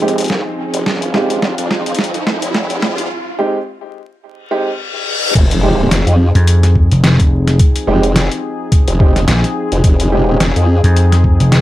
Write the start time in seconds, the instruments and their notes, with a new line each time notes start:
Already playing: wobble bass F1, analog synth pad F3 C4 D#4 G#4, riser
0.02 grand piano G#3 C4 D#4 G4
0.08 closed hi-hat
0.18 closed hi-hat
0.20 closed hi-hat
0.24 closed hi-hat
0.26 closed hi-hat
0.28 wobble bass A#1, snare, closed hi-hat
0.74 wobble bass F1, closed hi-hat
0.86 wobble bass F1, analog synth pad F4, snare
1.02 closed hi-hat
1.14 grand piano G#3 C4 D#4 G4, snare
1.30 closed hi-hat
1.42 wobble bass F1, snare
1.58 wobble bass F2, closed hi-hat
1.71 snare
1.86 wobble bass F2, closed hi-hat
1.95 closed hi-hat
1.99 snare
2.04 closed hi-hat
2.14 closed hi-hat
2.27 snare
2.42 wobble bass F1, closed hi-hat
2.55 snare
2.70 wobble bass F1, closed hi-hat
2.82 snare
2.98 closed hi-hat
3.39 grand piano G#3 C4 D#4 G4
4.23 reverse cymbal
4.51 grand piano G#3 C4 D#4 G4
5.35 wobble bass F1, analog synth pad F3 C4 D#4 G#4, kick, closed hi-hat, crash, impact
5.51 closed hi-hat
5.63 grand piano G#3 C4 D#4 G4
5.91 wobble bass F1, snare, closed hi-hat
6.07 wobble bass F2, closed hi-hat
6.35 slap bass F2, closed hi-hat
6.47 closed hi-hat
6.63 snare, closed hi-hat
6.76 kick
6.91 slap bass F1, closed hi-hat
7.04 snare, closed hi-hat
7.19 slap bass F1, kick, closed hi-hat
7.48 snare, closed hi-hat
7.59 kick, closed hi-hat
7.76 closed hi-hat
7.87 wobble bass F1, grand piano G#3 C4 D#4 G4
8.03 closed hi-hat
8.16 snare, closed hi-hat
8.32 closed hi-hat
8.72 kick, closed hi-hat
8.88 wobble bass F1, closed hi-hat
9.00 grand piano G#3 C4 D#4 G4, kick
9.16 snare, closed hi-hat
9.28 slap bass A#1, snare, closed hi-hat
9.44 snare, closed hi-hat
9.72 wobble bass F1, closed hi-hat
9.84 wobble bass F1, kick, closed hi-hat
10.00 closed hi-hat
10.12 grand piano G#3 C4 D#4 G4
10.40 wobble bass F1, snare, closed hi-hat
10.56 wobble bass F2, closed hi-hat
10.84 slap bass F2, closed hi-hat
10.96 closed hi-hat
11.12 snare, closed hi-hat
11.24 kick
11.40 slap bass F1, closed hi-hat
11.52 snare, closed hi-hat